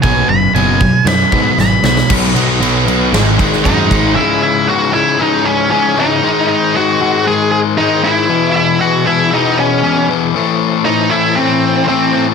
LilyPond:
<<
  \new Staff \with { instrumentName = "Lead electric guitar" } { \time 4/4 \key b \major \tempo 4 = 117 gis''8 b''8 gis''4 b''4 b''8 b''8 | r2. <dis' dis''>4 | \key cis \minor <e' e''>8 <e' e''>8 <fis' fis''>8 <e' e''>8 <dis' dis''>8 <cis' cis''>8 <cis' cis''>8 <dis' dis''>8~ | <dis' dis''>8 <dis' dis''>8 <fis' fis''>4 <gis' gis''>8 <gis' gis''>8 <dis' dis''>8 <e' e''>8~ |
<e' e''>8 <e' e''>8 <fis' fis''>8 <e' e''>8 <dis' dis''>8 <cis' cis''>4 r8 | r4 <dis' dis''>8 <e' e''>8 <c' c''>4 <c' c''>8. r16 | }
  \new Staff \with { instrumentName = "Tonewheel organ" } { \time 4/4 \key b \major << { r1 | fis'1 | \key cis \minor gis'1~ | gis'1~ |
gis'1 | a'1 | } \\ { r1 | b2 bis2 | cis'1 | bis1 |
b1 | c'1 | } >> }
  \new Staff \with { instrumentName = "Tonewheel organ" } { \clef bass \time 4/4 \key b \major << { r1 | fis2 gis2 | \key cis \minor gis1~ | gis1~ |
gis1 | a1 | } \\ { r1 | dis1 | e1 | dis1 |
e1~ | e1 | } >> }
  \new Staff \with { instrumentName = "Distorted electric guitar" } { \clef bass \time 4/4 \key b \major <b, fis b>8 <b, fis>8 <b, fis b>8 <b, fis>8 <b, fis>8 <b, fis b>8 <b, fis>8 <b, fis>8 | <b, fis b>8 <b, fis b>8 <b, fis b>8 <b, fis b>8 <gis, dis gis>8 <gis, dis gis>8 <gis, dis gis>8 <gis, dis gis>8 | \key cis \minor r1 | r1 |
r1 | r1 | }
  \new Staff \with { instrumentName = "Overdriven electric guitar" } { \clef bass \time 4/4 \key b \major <b, fis b>8 <b, fis>8 <b, fis b>8 <b, fis>8 <b, fis>8 <b, fis b>8 <b, fis>8 <b, fis>8 | <b, fis b>8 <b, fis b>8 <b, fis b>8 <b, fis b>8 <gis, dis gis>8 <gis, dis gis>8 <gis, dis gis>8 <gis, dis gis>8 | \key cis \minor <cis, gis, cis>4 <cis, gis, cis>8 <cis, gis, cis>8 <cis, gis, cis>4 <cis, gis, cis>8 <cis, gis, cis>8 | <gis, dis gis>4 <gis, dis gis>8 <gis, dis gis>8 <gis, dis gis>4 <gis, dis gis>8 <gis, dis gis>8 |
<e, b, e>4 <e, b, e>8 <e, b, e>8 <e, b, e>4 <e, b, e>8 <e, b, e>8 | <a, e a>4 <a, e a>8 <a, e a>8 <a, e a>4 <a, e a>8 <a, e a>8 | }
  \new Staff \with { instrumentName = "Picked electric bass" } { \clef bass \time 4/4 \key b \major b,,8 fis,,8 fis,,4 fis,8 gis,8 gis,,8 b,,8 | b,,8 b,,8 b,,8 b,,8 gis,,8 gis,,8 fis,8 gis,,8 | \key cis \minor r1 | r1 |
r1 | r1 | }
  \new DrumStaff \with { instrumentName = "Drums" } \drummode { \time 4/4 <cymc bd>4 cymc8 bd8 <cymc sn>8 bd8 sn8 sn16 sn16 | <cymc bd>8 cymc8 cymc8 cymc8 <cymc sn>8 <cymc bd>16 sn16 <cymc bd>8 <cymc bd>8 | r4 r4 r4 r4 | r4 r4 r4 r4 |
r4 r4 r4 r4 | r4 r4 r4 r4 | }
>>